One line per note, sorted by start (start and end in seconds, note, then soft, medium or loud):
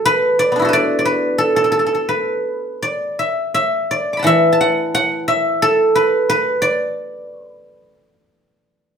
0.00 0.71 F#3 medium
0.00 0.78 A3 soft
0.00 0.51 B3 soft
0.00 0.32 D4 soft
0.00 0.17 E4 soft
0.00 0.62 F#4 medium
0.00 0.64 A4 medium
0.00 0.15 D5 soft
0.05 0.68 B4 loud
0.39 0.73 D5 medium
0.52 3.62 B3 soft
0.52 3.36 D4 soft
0.59 3.20 E4 soft
0.59 3.05 F#4 medium
0.65 1.38 A4 medium
0.65 1.05 B4 medium
0.73 0.98 D5 medium
0.99 2.82 D5 medium
1.05 2.08 B4 medium
1.38 1.56 A4 medium
1.56 1.64 A4 medium
1.64 1.71 A4 medium
1.72 1.79 A4 medium
1.79 1.86 A4 soft
1.86 1.94 A4 medium
1.95 4.14 A4 soft
2.09 4.13 B4 medium
2.82 3.90 D5 medium
3.19 3.54 E5 medium
3.54 4.26 E5 medium
3.91 5.76 D5 medium
4.13 5.52 B5 soft
4.13 5.35 D6 soft
4.19 4.60 F#5 soft
4.19 4.52 A5 soft
4.24 6.28 E3 medium
4.24 5.27 E5 loud
4.53 5.97 A5 medium
4.61 4.94 F#5 medium
4.95 6.55 F#5 medium
5.28 7.00 E5 medium
5.62 7.82 A4 loud
5.95 6.29 B4 medium
6.30 7.52 B4 medium
6.62 7.40 D5 medium
7.40 7.52 C5 medium
7.52 8.46 B4 medium